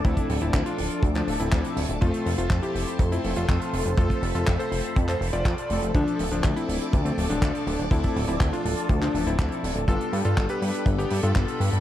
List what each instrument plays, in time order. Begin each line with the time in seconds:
Already playing: string machine A4 D5 A5 D6
0.04 analog synth bass D2, analog polysynth F3 A3 D4 A4, electric grand piano C4 E4, kick, closed hi-hat
0.17 kick, closed hi-hat
0.29 analog synth bass D1, open hi-hat
0.41 analog synth bass D1, electric grand piano C4 E4, closed hi-hat
0.53 analog synth bass D2, kick, clap, closed hi-hat
0.66 electric grand piano D4 F4, closed hi-hat
0.78 analog synth bass D1, open hi-hat
0.91 closed hi-hat
1.03 analog synth bass D2, kick, closed hi-hat
1.15 electric grand piano F3 D4, clap, closed hi-hat
1.27 analog synth bass D1, analog polysynth F3 A3 D4 A4, open hi-hat
1.40 analog synth bass D1, electric grand piano C4 E4, closed hi-hat
1.52 analog synth bass D2, analog polysynth F3 A3 D4 A4, kick, clap, closed hi-hat
1.64 closed hi-hat
1.76 analog synth bass D1, open hi-hat
1.88 analog synth bass D1, closed hi-hat
2.01 analog synth bass F2, analog polysynth F3 A3 C4 A4, electric grand piano A3 F4, string machine A4 C5 C6, kick, closed hi-hat
2.14 closed hi-hat
2.26 analog synth bass F1, open hi-hat
2.38 analog synth bass F1, electric grand piano A3 F4, closed hi-hat
2.50 analog synth bass F2, kick, clap, closed hi-hat
2.62 electric grand piano E4 G4, closed hi-hat
2.75 analog synth bass F1, open hi-hat
2.88 closed hi-hat
2.99 analog synth bass F2, kick, closed hi-hat
3.12 electric grand piano C4 E4, closed hi-hat
3.24 analog synth bass F1, analog polysynth F3 A3 C4 A4, open hi-hat
3.36 analog synth bass F1, electric grand piano A3 F4, closed hi-hat
3.49 analog synth bass F2, analog polysynth F3 A3 C4 A4, kick, clap, closed hi-hat
3.61 closed hi-hat
3.73 analog synth bass F1, open hi-hat
3.86 analog synth bass F1, closed hi-hat
3.98 analog synth bass F2, analog polysynth F3 A3 C4 A4, electric grand piano F4 A4, string machine B5, kick, closed hi-hat
4.10 kick, closed hi-hat
4.22 analog synth bass F1, open hi-hat
4.35 analog synth bass F1, electric grand piano F4 A4, closed hi-hat
4.46 analog synth bass F2, kick, clap, closed hi-hat
4.59 electric grand piano A4 C5, closed hi-hat
4.72 analog synth bass F1, open hi-hat
4.83 closed hi-hat
4.96 analog synth bass F2, kick, closed hi-hat
5.08 electric grand piano A4 C5, clap, closed hi-hat
5.21 analog synth bass F1, open hi-hat
5.33 analog synth bass F1, electric grand piano F4 D5, closed hi-hat
5.45 analog synth bass F2, kick, clap, closed hi-hat
5.58 closed hi-hat
5.70 analog synth bass F1, analog polysynth F3 A3 C4 A4, open hi-hat
5.82 analog synth bass F1, closed hi-hat
5.94 analog synth bass D2, analog polysynth F3 A3 D4 A4, electric grand piano F3 D4, string machine D5 A5 D6, kick, closed hi-hat
6.07 closed hi-hat
6.19 analog synth bass D1, open hi-hat
6.31 analog synth bass D1, electric grand piano F3 D4, closed hi-hat
6.44 analog synth bass D2, kick, clap, closed hi-hat
6.56 electric grand piano C4 E4, closed hi-hat
6.69 analog synth bass D1, open hi-hat
6.81 closed hi-hat
6.93 analog synth bass D2, kick, closed hi-hat
7.05 electric grand piano A3 C4, closed hi-hat
7.17 analog synth bass D1, analog polysynth F3 A3 D4 A4, open hi-hat
7.30 analog synth bass D1, electric grand piano F3 D4, closed hi-hat
7.42 analog synth bass D2, analog polysynth F3 A3 D4 A4, kick, clap, closed hi-hat
7.55 closed hi-hat
7.67 analog synth bass D1, open hi-hat
7.79 analog synth bass D1, closed hi-hat
7.91 analog synth bass D2, analog polysynth F3 A3 D4 A4, electric grand piano C4 E4, kick, closed hi-hat
8.03 kick, closed hi-hat
8.16 analog synth bass D1, open hi-hat
8.28 analog synth bass D1, electric grand piano C4 E4, closed hi-hat
8.40 analog synth bass D2, kick, clap, closed hi-hat
8.53 electric grand piano D4 F4, closed hi-hat
8.65 analog synth bass D1, open hi-hat
8.77 closed hi-hat
8.89 analog synth bass D2, kick, closed hi-hat
9.02 electric grand piano F3 D4, clap, closed hi-hat
9.14 analog synth bass D1, analog polysynth F3 A3 D4 A4, open hi-hat
9.27 analog synth bass D1, electric grand piano C4 E4, closed hi-hat
9.39 analog synth bass D2, analog polysynth F3 A3 D4 A4, kick, clap, closed hi-hat
9.52 closed hi-hat
9.63 analog synth bass D1, open hi-hat
9.76 analog synth bass D1, closed hi-hat
9.88 analog synth bass G1, analog polysynth G3 B3 D4 A4, electric grand piano F4 A4, string machine D5 G5 B5, kick, closed hi-hat
10.01 closed hi-hat
10.13 analog synth bass G2, open hi-hat
10.24 analog synth bass G2, electric grand piano F4 A4, closed hi-hat
10.37 analog synth bass G1, kick, clap, closed hi-hat
10.49 electric grand piano G4 B4, closed hi-hat
10.62 analog synth bass G2, open hi-hat
10.74 closed hi-hat
10.86 analog synth bass G1, kick, closed hi-hat
10.98 electric grand piano B3 G4, closed hi-hat
11.10 analog synth bass G2, analog polysynth G3 B3 D4 A4, open hi-hat
11.23 analog synth bass G2, electric grand piano F4 A4, closed hi-hat
11.35 analog synth bass G1, analog polysynth G3 B3 D4 A4, kick, clap, closed hi-hat
11.48 closed hi-hat
11.60 analog synth bass G2, open hi-hat
11.72 analog synth bass G2, closed hi-hat